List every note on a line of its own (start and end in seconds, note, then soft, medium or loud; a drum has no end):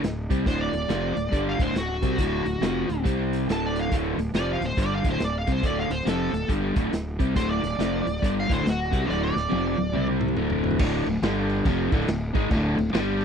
0.03 0.28 D1 medium
0.03 0.25 D2 medium
0.03 0.25 A2 medium
0.03 snare loud
0.03 closed hi-hat medium
0.30 0.45 C2 medium
0.30 0.46 C3 medium
0.30 0.46 G3 medium
0.30 0.46 C4 loud
0.30 kick medium
0.30 closed hi-hat medium
0.46 0.71 D1 medium
0.46 0.73 D2 medium
0.46 0.73 A2 medium
0.46 0.73 D3 loud
0.46 0.61 C5 medium
0.46 kick medium
0.46 closed hi-hat medium
0.60 1.44 D5 medium
0.73 0.88 D1 medium
0.73 0.87 D2 medium
0.73 0.86 A2 medium
0.73 closed hi-hat medium
0.88 1.15 F1 medium
0.88 1.15 F2 medium
0.88 1.15 C3 medium
0.88 1.16 F3 medium
0.88 snare loud
0.88 closed hi-hat medium
1.15 1.31 D1 medium
1.15 1.29 D2 medium
1.15 1.29 A2 medium
1.15 closed hi-hat medium
1.31 1.57 G1 medium
1.31 1.58 G2 medium
1.31 1.59 D3 loud
1.31 1.59 G3 medium
1.31 kick medium
1.31 closed hi-hat medium
1.49 1.62 F5 medium
1.59 1.73 D1 medium
1.59 1.75 D2 medium
1.59 1.75 A2 medium
1.59 1.75 D3 medium
1.59 1.76 C5 medium
1.59 kick loud
1.59 closed hi-hat medium
1.74 2.00 D1 medium
1.74 1.98 D2 medium
1.74 1.98 A2 medium
1.74 3.02 F#4 medium
1.74 snare medium
1.74 closed hi-hat medium
2.02 2.18 C2 medium
2.02 2.18 C3 medium
2.02 2.18 G3 medium
2.02 2.19 C4 medium
2.02 kick medium
2.02 closed hi-hat medium
2.18 2.44 D1 medium
2.18 2.45 D2 medium
2.18 2.45 A2 medium
2.18 2.46 D3 loud
2.18 kick medium
2.18 closed hi-hat medium
2.45 2.60 D1 medium
2.45 2.59 D2 medium
2.45 2.59 A2 medium
2.45 closed hi-hat medium
2.61 2.87 F1 medium
2.61 2.88 F2 medium
2.61 2.88 C3 medium
2.61 2.89 F3 medium
2.61 snare loud
2.61 closed hi-hat medium
2.88 3.04 D1 medium
2.88 3.02 D2 medium
2.88 3.01 A2 medium
2.88 closed hi-hat medium
3.04 3.45 C2 medium
3.04 3.47 C3 medium
3.04 3.48 G3 medium
3.04 3.48 C4 medium
3.04 kick loud
3.04 closed hi-hat medium
3.33 closed hi-hat medium
3.48 3.88 D1 medium
3.48 3.90 D2 medium
3.48 3.91 A2 medium
3.48 3.92 D3 medium
3.48 snare loud
3.48 closed hi-hat medium
3.52 3.64 A5 medium
3.67 3.79 D5 medium
3.76 closed hi-hat medium
3.81 3.93 F5 medium
3.92 4.17 D1 medium
3.92 4.18 D2 medium
3.92 4.18 A2 medium
3.92 4.18 D3 medium
3.92 kick medium
3.92 closed hi-hat medium
4.17 4.33 D1 medium
4.17 4.32 D2 medium
4.17 4.32 A2 medium
4.17 snare soft
4.17 closed hi-hat medium
4.34 4.59 F1 medium
4.34 4.61 F2 medium
4.34 4.61 C3 medium
4.34 4.61 F3 loud
4.34 4.49 D5 loud
4.34 snare loud
4.34 closed hi-hat medium
4.53 4.65 F5 medium
4.61 4.76 D1 medium
4.61 4.75 D2 medium
4.61 4.75 A2 medium
4.61 closed hi-hat medium
4.65 4.78 C5 medium
4.77 5.03 G1 medium
4.77 5.04 G2 medium
4.77 5.04 D3 medium
4.77 5.04 G3 loud
4.77 kick loud
4.77 closed hi-hat medium
4.82 4.94 D5 loud
4.95 5.08 F5 medium
5.04 5.20 D1 medium
5.04 5.18 D2 medium
5.04 5.19 A2 medium
5.04 5.20 D3 medium
5.04 kick loud
5.04 closed hi-hat medium
5.11 5.22 C5 medium
5.19 5.46 D1 medium
5.19 5.42 D2 medium
5.19 5.42 A2 medium
5.19 snare loud
5.19 closed hi-hat medium
5.24 5.36 D5 medium
5.39 5.51 F5 medium
5.47 5.62 C2 medium
5.47 5.63 C3 medium
5.47 5.63 G3 medium
5.47 5.63 C4 loud
5.47 kick medium
5.47 closed hi-hat medium
5.52 5.65 C5 medium
5.63 5.89 D1 medium
5.63 5.89 D2 loud
5.63 5.89 A2 medium
5.63 5.90 D3 medium
5.63 5.79 D5 medium
5.63 kick loud
5.63 closed hi-hat medium
5.80 5.93 F5 medium
5.90 6.05 D1 medium
5.90 6.03 D2 medium
5.90 6.03 A2 medium
5.90 6.06 C5 medium
5.90 closed hi-hat medium
6.05 6.32 F1 medium
6.05 6.32 F2 medium
6.05 6.32 C3 medium
6.05 6.33 F3 medium
6.05 6.50 A4 medium
6.05 snare loud
6.05 closed hi-hat medium
6.32 6.48 D1 medium
6.32 6.46 D2 medium
6.32 6.46 A2 medium
6.32 closed hi-hat medium
6.48 6.75 G1 medium
6.48 6.75 G2 medium
6.48 6.75 D3 medium
6.48 6.76 G3 loud
6.48 kick medium
6.48 closed hi-hat medium
6.76 6.91 D1 medium
6.76 6.90 D2 medium
6.76 6.91 A2 medium
6.76 6.92 D3 medium
6.76 kick loud
6.76 closed hi-hat medium
6.92 7.18 D1 medium
6.92 7.14 D2 medium
6.92 7.14 A2 medium
6.92 snare loud
6.92 closed hi-hat medium
7.19 7.35 C2 medium
7.19 7.35 C3 medium
7.19 7.35 G3 medium
7.19 7.36 C4 medium
7.19 kick loud
7.19 closed hi-hat medium
7.35 7.61 D1 medium
7.35 7.61 D2 medium
7.35 7.61 A2 loud
7.35 7.63 D3 loud
7.35 7.50 C5 medium
7.35 kick loud
7.35 closed hi-hat medium
7.50 8.34 D5 medium
7.62 7.78 D1 medium
7.62 7.76 D2 medium
7.62 7.76 A2 medium
7.62 snare soft
7.62 closed hi-hat medium
7.78 8.04 F1 medium
7.78 8.05 F2 medium
7.78 8.05 C3 medium
7.78 8.06 F3 medium
7.78 snare loud
7.78 closed hi-hat medium
8.06 8.21 D1 medium
8.06 8.19 D2 medium
8.06 8.19 A2 medium
8.06 closed hi-hat medium
8.16 snare soft
8.22 8.48 G1 medium
8.22 8.48 G2 loud
8.22 8.48 D3 loud
8.22 8.49 G3 medium
8.22 kick medium
8.22 closed hi-hat medium
8.40 8.52 F5 medium
8.49 8.64 D1 medium
8.49 8.63 D2 medium
8.49 8.64 A2 medium
8.49 8.65 D3 loud
8.49 8.66 C5 medium
8.49 kick loud
8.49 closed hi-hat medium
8.64 8.91 D1 medium
8.64 8.86 D2 medium
8.64 8.87 A2 medium
8.64 snare loud
8.64 closed hi-hat medium
8.69 9.09 F#4 medium
8.91 9.07 C2 medium
8.91 9.06 C3 medium
8.91 9.07 G3 medium
8.91 9.07 C4 medium
8.91 kick medium
8.91 closed hi-hat medium
9.06 9.34 D1 medium
9.06 9.32 D2 medium
9.06 9.33 A2 medium
9.06 9.34 D3 medium
9.06 9.23 D5 medium
9.06 snare medium
9.24 10.07 D5 medium
9.33 9.50 D1 medium
9.33 9.47 D2 medium
9.33 9.47 A2 medium
9.33 snare medium
9.49 9.77 F1 medium
9.49 9.76 F2 medium
9.49 9.77 C3 medium
9.49 9.77 F3 medium
9.49 high tom medium
9.78 9.93 D1 medium
9.78 9.91 D2 medium
9.78 9.91 A2 medium
9.78 high tom medium
9.93 10.34 C2 medium
9.93 10.36 C3 medium
9.93 10.36 G3 medium
9.93 10.37 C4 medium
9.93 mid tom medium
10.07 mid tom medium
10.21 mid tom medium
10.28 mid tom medium
10.36 10.77 D1 medium
10.36 10.78 D2 medium
10.36 10.79 A2 medium
10.36 10.80 D3 medium
10.36 mid tom medium
10.50 floor tom medium
10.64 floor tom medium
10.71 floor tom medium
10.79 11.05 D1 loud
10.79 11.06 D2 loud
10.79 11.06 A2 loud
10.79 11.06 D3 loud
10.79 kick loud
10.79 crash loud
10.79 crash medium
11.06 11.21 D1 medium
11.06 11.20 D2 medium
11.06 11.20 A2 medium
11.06 crash medium
11.22 11.62 G1 loud
11.22 11.65 G2 medium
11.22 11.66 D3 medium
11.22 11.66 G3 loud
11.22 snare loud
11.22 crash medium
11.50 crash medium
11.65 11.91 F1 medium
11.65 11.91 F2 loud
11.65 11.92 C3 medium
11.65 11.92 F3 loud
11.65 kick loud
11.65 crash medium
11.92 12.07 D1 loud
11.92 12.06 D2 medium
11.92 12.06 A2 medium
11.92 12.08 D3 loud
11.92 kick loud
11.92 crash medium
12.01 snare soft
12.07 12.34 D1 medium
12.07 12.30 D2 medium
12.07 12.29 A2 medium
12.07 snare loud
12.07 crash medium
12.34 12.50 G#1 medium
12.34 12.50 G#2 medium
12.34 12.50 D#3 medium
12.34 12.50 G#3 medium
12.34 kick loud
12.34 crash medium
12.50 12.76 D1 loud
12.50 12.76 D2 medium
12.50 12.77 A2 loud
12.50 12.77 D3 loud
12.50 kick loud
12.50 crash medium
12.77 12.92 D1 medium
12.77 12.93 D2 medium
12.77 12.93 A2 medium
12.77 crash medium
12.93 13.25 G1 medium
12.93 13.25 G2 medium
12.93 13.25 D3 loud
12.93 13.25 G3 loud
12.93 snare loud
12.93 crash medium
13.21 crash medium